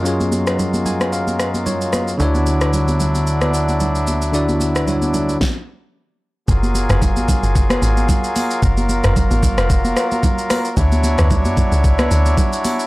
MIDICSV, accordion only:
0, 0, Header, 1, 2, 480
1, 0, Start_track
1, 0, Tempo, 535714
1, 49, Time_signature, 4, 2, 24, 8
1, 11530, End_track
2, 0, Start_track
2, 0, Title_t, "Accordion"
2, 0, Program_c, 0, 21
2, 0, Note_on_c, 0, 54, 82
2, 0, Note_on_c, 0, 56, 68
2, 0, Note_on_c, 0, 58, 70
2, 0, Note_on_c, 0, 65, 73
2, 1933, Note_off_c, 0, 54, 0
2, 1934, Note_off_c, 0, 56, 0
2, 1934, Note_off_c, 0, 58, 0
2, 1934, Note_off_c, 0, 65, 0
2, 1964, Note_on_c, 0, 64, 87
2, 1965, Note_on_c, 0, 50, 76
2, 1965, Note_on_c, 0, 54, 66
2, 1965, Note_on_c, 0, 62, 68
2, 4818, Note_off_c, 0, 50, 0
2, 4818, Note_off_c, 0, 54, 0
2, 4818, Note_off_c, 0, 62, 0
2, 4818, Note_off_c, 0, 64, 0
2, 5809, Note_on_c, 0, 58, 74
2, 5809, Note_on_c, 0, 68, 89
2, 5811, Note_on_c, 0, 54, 82
2, 5811, Note_on_c, 0, 65, 76
2, 7710, Note_off_c, 0, 68, 0
2, 7731, Note_on_c, 0, 70, 92
2, 9613, Note_off_c, 0, 58, 0
2, 9614, Note_off_c, 0, 65, 0
2, 9631, Note_off_c, 0, 70, 0
2, 9650, Note_on_c, 0, 73, 95
2, 9651, Note_on_c, 0, 62, 78
2, 9651, Note_on_c, 0, 64, 73
2, 11530, Note_off_c, 0, 54, 0
2, 11530, Note_off_c, 0, 62, 0
2, 11530, Note_off_c, 0, 64, 0
2, 11530, Note_off_c, 0, 73, 0
2, 11530, End_track
0, 0, End_of_file